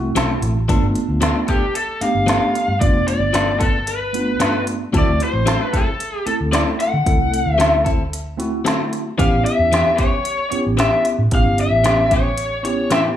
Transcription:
Already playing: C2 A3 C4 E4 F#4
0.15 B1 F#3 C4 E4 A4, snare, closed hi-hat
0.41 A1, closed hi-hat
0.68 F3 A3 B3 D4 F4 A4, kick, closed hi-hat
0.83 G1
0.95 closed hi-hat
1.09 D2
1.21 F3 B3 D4 A4, snare, closed hi-hat
1.47 B3 D4 G4 A4, kick, closed hi-hat
1.75 A4, closed hi-hat
2.01 A3 B3 D4 G4 F5, muted fingered electric bass stroke, closed hi-hat
2.15 G1
2.26 F3 B3 D4 A4, snare, closed hi-hat
2.55 closed hi-hat
2.68 G2
2.80 G1 A3 B3 D4 F4 D5, kick, closed hi-hat
2.94 F1
3.08 D5, closed hi-hat
3.20 G1
3.33 F3 B3 D4 A4, snare, closed hi-hat
3.60 B3 D4 A4, kick, closed hi-hat
3.87 B4, closed hi-hat
4.13 A3 B3 D4 F4, closed hi-hat
4.40 G2 F3 B3 D4 A4, snare, closed hi-hat
4.67 closed hi-hat
4.92 D2 F#3 A3 C4 E4 F#4 A4, kick, closed hi-hat
4.98 D5
5.08 D2
5.20 C5, closed hi-hat
5.33 A1
5.46 F#3 C4 E4 A4, snare, closed hi-hat
5.63 B4
5.73 C4 E4 A4, kick, closed hi-hat
6.00 closed hi-hat
6.26 A3 C4 E4 A4, muted fingered electric bass stroke, closed hi-hat
6.41 D2
6.52 F#3 C4 E4 A4 D5, snare, closed hi-hat
6.80 F#5, closed hi-hat
6.93 D3
7.06 D2 A3 C4 E4 A4, kick, closed hi-hat
7.19 C2
7.34 closed hi-hat
7.46 D2
7.52 E5
7.58 F#3 C4 E4 A4, snare, closed hi-hat
7.85 C4 E4 A4, kick, closed hi-hat
8.13 closed hi-hat
8.37 A3 C4 E4 F#4, closed hi-hat
8.65 D3 F#3 C4 E4 A4, snare, closed hi-hat
8.93 closed hi-hat
9.17 A1 E3 B3 C#4 E4 G4 F5, kick, closed hi-hat
9.32 A1
9.45 E5, closed hi-hat
9.59 E2
9.72 E3 B3 C#4 G4, snare, closed hi-hat
9.97 B3 C#4 G4 C#5, kick, closed hi-hat
10.25 closed hi-hat
10.50 B3 C#4 E4 G4 C#5, muted fingered electric bass stroke, closed hi-hat
10.66 A1
10.77 E3 B3 C#4 G4 E5, snare, closed hi-hat
11.05 closed hi-hat
11.18 A2
11.31 A1 B3 C#4 E4 G4 F5, kick, closed hi-hat
11.45 G1
11.58 E5, closed hi-hat
11.71 A1
11.84 E3 B3 C#4 G4, snare, closed hi-hat
12.11 B3 C#4 G4 C#5, kick, closed hi-hat
12.38 closed hi-hat
12.63 B3 C#4 E4 G4 C#5, closed hi-hat
12.90 A2 E3 B3 C#4 G4 E5, snare, closed hi-hat

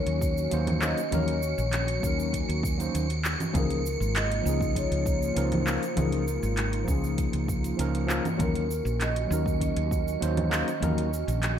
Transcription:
Already playing: D#3 F#3 A#3 C#4 D#4 F#4 A#4 C#5 C#7
0.06 D#2, closed hi-hat
0.21 kick, cabasa
0.38 cabasa
0.50 D#2 F#3 A#3 C#4 D#4 C5, closed hi-hat, cabasa
0.67 closed hi-hat, low conga
0.80 F#3 A#3 C#4 D#4 C5 D#5, clap, cabasa
0.98 closed hi-hat, cabasa
1.11 D#2 F#3 A#3 C#4 D#4 A#4 C#5, closed hi-hat, low conga, cabasa
1.28 closed hi-hat
1.43 cabasa
1.58 A#1, cabasa
1.73 clap, closed hi-hat, cabasa
1.88 closed hi-hat
2.00 D#2 F#3 A#3 C#4, kick
2.04 D#4 A#4, cabasa
2.20 cabasa
2.33 kick, closed hi-hat, cabasa
2.49 D#2, closed hi-hat
2.63 kick, cabasa
2.77 F#3 A#3 C#4 D#4 C5, closed hi-hat, cabasa
2.94 D#2, closed hi-hat, cabasa
3.10 closed hi-hat
3.25 clap, cabasa
3.40 closed hi-hat, low conga, cabasa
3.53 C#2 C#3 F3 A#3 C#4 D#4 F4 G#4 A#4, kick, closed hi-hat, low conga, cabasa
3.70 closed hi-hat
3.86 cabasa
4.00 G#1, cabasa
4.16 D#5, clap, closed hi-hat, cabasa
4.32 closed hi-hat
4.42 C#2 F3 A#3 C#4
4.47 D#4 G#4, cabasa
4.61 kick, cabasa
4.75 C#5, kick, closed hi-hat, cabasa
4.91 C#2, closed hi-hat
5.06 kick, cabasa
5.22 cabasa
5.34 C#2 F3 A#3 C#4 D#4 A#4 C5, closed hi-hat, cabasa
5.52 closed hi-hat, low conga
5.65 F3 A#3 C#4 D#4 A#4, clap, cabasa
5.83 closed hi-hat, cabasa
5.95 C#2 F3 A#3 C#4 D#4 G#4 A#4, closed hi-hat, low conga, cabasa
6.12 closed hi-hat
6.28 cabasa
6.43 G#1, cabasa
6.57 clap, closed hi-hat, cabasa
6.73 closed hi-hat
6.84 C#2 F3 A#3 C#4, kick, cabasa
6.90 D#4 G#4
7.04 cabasa
7.18 kick, closed hi-hat, cabasa
7.33 C#2, closed hi-hat
7.48 kick, cabasa
7.64 closed hi-hat, cabasa
7.77 C#2 F3 A#3 C#4 D#4 A#4, closed hi-hat, cabasa
7.95 closed hi-hat
8.07 F3 A#3 C#4 D#4 A#4, clap, cabasa
8.25 closed hi-hat, low conga, cabasa
8.38 D#2 D#3 F#3 A#3 C#4 D#4 F#4 A#4, kick, closed hi-hat, low conga, cabasa
8.55 closed hi-hat
8.71 cabasa
8.85 A#1, cabasa
9.01 D#5, clap, closed hi-hat, cabasa
9.16 closed hi-hat
9.27 D#2 F#3 A#3 C#4
9.32 D#4 A#4, cabasa
9.46 kick, cabasa
9.61 D#5, kick, closed hi-hat, cabasa
9.76 D#2, closed hi-hat
9.91 kick, cabasa
10.08 cabasa
10.19 D#2 F#3 A#3 C#4 D#4 C5, closed hi-hat, cabasa
10.37 closed hi-hat, low conga
10.50 F#3 A#3 C#4 D#4 C5, clap, cabasa
10.68 closed hi-hat, cabasa
10.80 D#2 F#3 A#3 C#4 D#4 A#4, closed hi-hat, low conga, cabasa
10.98 closed hi-hat
11.14 cabasa
11.28 A#1, closed hi-hat, cabasa
11.43 clap, closed hi-hat, cabasa

